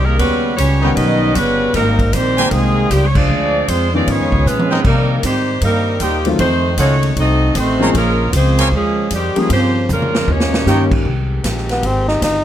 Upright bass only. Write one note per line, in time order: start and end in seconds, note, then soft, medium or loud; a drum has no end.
0.00 0.18 C2 medium
0.19 0.57 D#2 medium
0.58 0.95 C#2 medium
0.97 1.34 B1 medium
1.35 1.73 G1 medium
1.74 2.11 G#1 medium
2.13 2.50 A#1 medium
2.51 2.89 C2 medium
2.91 3.28 C#2 medium
3.29 3.67 D2 medium
3.68 4.06 F2 medium
4.07 4.20 G#2 medium
4.20 4.31 F2 medium
4.32 4.44 C#2 medium
4.46 4.83 A#2 medium
4.84 5.22 C3 medium
5.23 5.61 G#2 medium
5.61 5.99 G2 medium
6.00 6.38 D#2 medium
6.39 6.77 F2 medium
6.78 7.15 C#2 medium
7.16 7.54 C2 medium
7.55 7.93 A1 medium
7.94 8.32 A#1 medium
8.33 8.71 C#2 medium
8.72 9.10 D#2 medium
9.11 9.34 F2 medium
9.36 muted upright bass stroke soft
9.50 9.87 G2 medium
9.89 10.27 F2 medium
10.27 10.65 D#2 medium
10.66 11.04 G2 medium
11.05 11.43 C2 medium
11.44 11.82 A#1 medium
11.83 12.20 G#1 medium
12.22 12.44 G1 medium